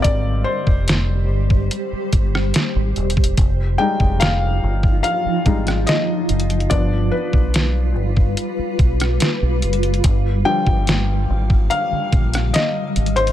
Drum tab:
HH |x-----------------------x-----------------------x-----------x-----------x-----------x---x---x---|x-----------------------x-----------------------x-----------x-----x-----x-----------x--x--x--x--|x-----------------------x-----------------------x-----------x-----x-----x-----------x--x--x--x--|x-----------------------x-----------------------x-----------x-----x-----x-----------x--x--x--x--|
SD |------------------------o-----------------------------------------r-----o-----------------------|------------------------o-----------------------------------------r-----o-----------------------|------------------------o-----------------------------------------r-----o-----------------------|------------------------o-----------------------------------------r-----o-----------------------|
BD |o-----------------o-----------------------o-----------------o-----------------------------o-----|o-----------------o-----------------------o-----------------o-----------------------------------|o-----------------o-----------------------o-----------------o-----------------------------------|o-----------------o-----------------------o-----------------o-----------------------------------|